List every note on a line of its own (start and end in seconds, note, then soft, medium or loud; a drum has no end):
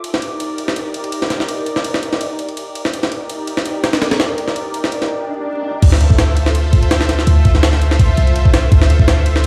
0.00 2.91 D#4 medium
0.00 2.91 G4 medium
0.00 2.91 A#4 medium
0.00 2.91 D5 medium
0.00 5.10 D6 medium
0.04 ride medium
0.14 snare medium
0.22 ride medium
0.40 ride medium
0.58 ride medium
0.68 snare soft
0.76 ride medium
0.94 ride medium
1.04 ride soft
1.12 ride medium
1.22 snare soft
1.30 snare soft
1.30 ride medium
1.40 snare soft
1.48 ride medium
1.66 ride medium
1.76 snare soft
1.84 ride medium
1.94 snare soft
2.03 ride medium
2.13 snare soft
2.21 ride medium
2.39 ride medium
2.49 ride soft
2.57 ride medium
2.75 ride medium
2.85 snare soft
2.93 5.80 D#4 medium
2.93 5.81 G4 medium
2.93 5.81 A#4 medium
2.93 5.80 D5 medium
2.93 ride medium
3.03 snare medium
3.12 ride medium
3.29 ride medium
3.47 ride medium
3.57 snare soft
3.66 ride medium
3.84 snare loud
3.84 ride medium
3.93 snare loud
3.93 ride medium
4.02 snare loud
4.02 ride medium
4.11 snare loud
4.11 ride medium
4.20 snare loud
4.20 ride medium
4.38 ride medium
4.48 snare soft
4.56 ride medium
4.74 ride medium
4.84 snare soft
4.92 ride medium
5.02 snare soft
5.10 swell medium
5.82 7.26 D2 loud
5.82 6.35 F4 loud
5.82 6.35 A4 medium
5.82 6.35 C5 medium
5.82 6.35 E5 loud
5.82 kick loud
5.82 crash medium
5.82 ride medium
5.92 snare medium
6.01 ride medium
6.10 kick loud
6.18 snare loud
6.18 ride medium
6.37 7.25 F4 loud
6.37 7.25 A4 medium
6.37 7.25 C5 medium
6.37 7.25 E5 loud
6.37 ride medium
6.46 snare soft
6.55 ride medium
6.73 kick loud
6.73 ride medium
6.83 ride soft
6.91 snare loud
6.91 ride medium
7.01 snare medium
7.09 snare soft
7.09 ride medium
7.19 snare soft
7.26 8.16 D2 loud
7.26 7.79 F4 loud
7.26 7.79 A4 medium
7.26 7.79 C5 medium
7.26 7.79 E5 loud
7.26 ride medium
7.45 kick medium
7.45 ride medium
7.55 snare soft
7.63 snare loud
7.63 ride medium
7.73 snare soft
7.80 8.69 F4 loud
7.80 8.69 A4 medium
7.80 8.69 C5 medium
7.80 8.69 E5 loud
7.80 ride medium
7.91 snare soft
7.99 kick loud
7.99 ride medium
8.17 8.71 C2 medium
8.17 ride medium
8.27 ride soft
8.36 ride medium
8.45 kick medium
8.54 snare loud
8.54 ride medium
8.71 9.47 D2 loud
8.71 9.24 F4 loud
8.71 9.24 A4 medium
8.71 9.24 C5 medium
8.71 9.24 E5 loud
8.71 kick loud
8.71 ride medium
8.82 snare medium
8.90 ride medium
9.00 kick loud
9.08 snare loud
9.08 ride medium
9.26 9.47 F4 loud
9.26 9.47 A4 medium
9.26 9.47 C5 loud
9.26 9.47 E5 loud
9.26 ride medium
9.36 snare soft